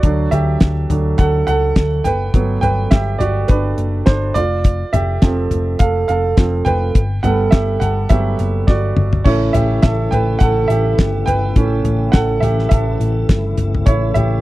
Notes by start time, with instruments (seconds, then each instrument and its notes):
Already playing: upright piano F#4 D5
0.03 picked electric bass D2, upright piano F#3 A3 D4, kick, closed hi-hat
0.31 picked electric bass D2, upright piano G4 E5, closed hi-hat, floor tom
0.60 picked electric bass D2, kick, snare, closed hi-hat
0.90 picked electric bass D2, upright piano F#3 A3 D4, closed hi-hat, floor tom
1.18 picked electric bass D2, upright piano A4 F#5, kick, closed hi-hat
1.47 picked electric bass C#2, upright piano A4 F#5, closed hi-hat
1.76 picked electric bass D2, kick, snare, closed hi-hat
2.04 picked electric bass F#1, upright piano B4 G5, closed hi-hat, floor tom
2.34 picked electric bass G1, upright piano F#3 A3 B3, kick, closed hi-hat
2.61 picked electric bass G1, upright piano B4 G5, closed hi-hat, floor tom
2.91 picked electric bass G1, upright piano G4 E5, kick, snare, closed hi-hat
3.18 picked electric bass G1, upright piano F#4 D5, closed hi-hat, floor tom
3.48 picked electric bass G1, upright piano D4 B4, kick, closed hi-hat
3.78 picked electric bass F#1, closed hi-hat
4.06 picked electric bass G1, upright piano D4 C5, kick, snare, closed hi-hat
4.34 picked electric bass F1, upright piano F4 D5, closed hi-hat, floor tom
4.64 kick, closed hi-hat
4.93 picked electric bass F1, upright piano G4 E5, closed hi-hat, floor tom
5.22 picked electric bass F1, upright piano F3 A3 C4, kick, snare, closed hi-hat
5.51 picked electric bass F1, closed hi-hat, floor tom
5.79 picked electric bass F1, upright piano A4 F5, kick, closed hi-hat
6.08 picked electric bass F1, upright piano A4 F5, closed hi-hat
6.37 picked electric bass F1, upright piano F3 A3 C4, kick, snare, closed hi-hat
6.65 picked electric bass F1, upright piano B4 G5, closed hi-hat, floor tom
6.95 picked electric bass G1, kick, closed hi-hat
7.23 picked electric bass G1, upright piano G3 A3 B3 A4 F#5, closed hi-hat, floor tom
7.51 picked electric bass G1, upright piano G4 E5, kick, snare, closed hi-hat
7.80 picked electric bass G1, upright piano A4 F#5, closed hi-hat, floor tom
8.09 picked electric bass G1, upright piano F#3 A3 B3 G4 E5, kick, closed hi-hat
8.39 picked electric bass F#1, closed hi-hat
8.67 picked electric bass G1, upright piano F#4 D5, kick, snare
8.97 picked electric bass G1, mid tom
9.13 floor tom
9.24 picked electric bass A1, tonewheel organ C#3 E3 A3 E4, upright piano E3 A3 C#4 E4 C#5, kick, crash
9.53 picked electric bass A1, upright piano G4 E5, closed hi-hat, floor tom
9.82 picked electric bass A1, upright piano A4 E5, kick, snare, closed hi-hat
10.11 picked electric bass A1, upright piano B4 G5, closed hi-hat, floor tom
10.39 picked electric bass A1, upright piano A4 F#5, kick, closed hi-hat
10.68 picked electric bass A1, upright piano G4 E5, closed hi-hat
10.99 picked electric bass G1, kick, snare, closed hi-hat
11.26 picked electric bass G1, upright piano B4 G5, closed hi-hat, floor tom
11.56 picked electric bass A1, upright piano E3 A3 C#4, kick, closed hi-hat
11.84 picked electric bass A1, closed hi-hat, floor tom
12.12 picked electric bass A1, upright piano A4 F#5, kick, snare, closed hi-hat
12.40 picked electric bass A1, upright piano G4 E5, closed hi-hat, floor tom
12.59 snare
12.69 picked electric bass A1, upright piano A4 E5, kick, closed hi-hat
13.00 picked electric bass A1, closed hi-hat
13.29 picked electric bass G1, kick, snare, closed hi-hat
13.58 picked electric bass G1, closed hi-hat, floor tom
13.75 floor tom
13.86 picked electric bass A1, upright piano E4 C#5, kick, closed hi-hat
14.14 picked electric bass A1, upright piano G4 E5, closed hi-hat, floor tom